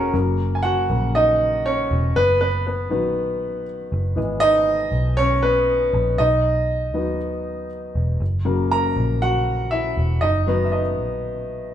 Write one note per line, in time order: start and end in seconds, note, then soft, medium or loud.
0.00 0.12 E1 medium
0.00 0.16 C#4 medium
0.00 0.16 F#4 medium
0.00 0.16 G#4 loud
0.00 0.16 A#4 loud
0.00 0.11 C#5 medium
0.00 0.15 G#5 medium
0.13 0.86 F#1 loud
0.13 0.85 C#3 medium
0.13 0.86 F#3 medium
0.13 0.86 A#3 medium
0.55 0.63 G#5 medium
0.63 1.11 F#4 medium
0.63 1.15 F#5 loud
0.89 1.87 A#1 medium
0.89 1.12 C#3 medium
0.89 1.12 F#3 soft
0.89 1.12 A#3 medium
1.15 1.62 D#4 medium
1.15 1.67 D#5 loud
1.66 2.13 C#4 medium
1.66 2.17 C#5 loud
1.91 2.14 E1 medium
2.16 2.92 F#1 loud
2.16 2.39 B3 medium
2.16 2.39 B4 loud
2.41 2.47 B3 medium
2.41 2.46 B4 loud
2.67 2.90 B3 medium
2.67 3.63 B4 medium
2.90 3.88 A#1 medium
2.90 3.62 D#3 medium
2.90 3.63 F#3 medium
2.90 3.63 B3 medium
3.92 4.16 F#1 loud
4.16 4.89 G#1 loud
4.16 4.50 E3 medium
4.16 4.50 G#3 medium
4.16 4.51 B3 medium
4.40 5.14 D#4 loud
4.40 5.19 D#5 loud
4.92 5.89 B1 medium
5.17 5.42 C#4 medium
5.17 5.44 C#5 loud
5.43 6.16 B3 medium
5.43 6.15 B4 loud
5.94 6.17 A#1 loud
6.18 6.94 B1 loud
6.18 7.16 D#4 medium
6.18 7.16 D#5 loud
6.94 7.91 D#2 loud
6.94 7.66 D#3 medium
6.94 7.66 F#3 medium
6.94 7.67 B3 medium
7.95 8.19 E1 medium
8.20 8.92 F#1 loud
8.45 8.79 C#3 medium
8.45 8.79 F#3 medium
8.45 8.79 A#3 medium
8.71 9.18 A#4 medium
8.71 9.18 A#5 loud
8.97 9.93 A#1 medium
9.22 9.69 F#4 medium
9.22 9.69 F#5 loud
9.71 10.19 E4 medium
9.71 10.23 E5 loud
9.97 10.21 E1 loud
10.21 10.98 F#1 loud
10.21 10.63 D#4 medium
10.21 10.67 D#5 loud
10.47 10.81 D#3 medium
10.47 10.81 F#3 medium
10.47 10.82 B3 medium
10.65 10.72 E5 medium
10.72 11.70 D#4 medium
10.72 11.69 D#5 medium
10.98 11.74 A#1 medium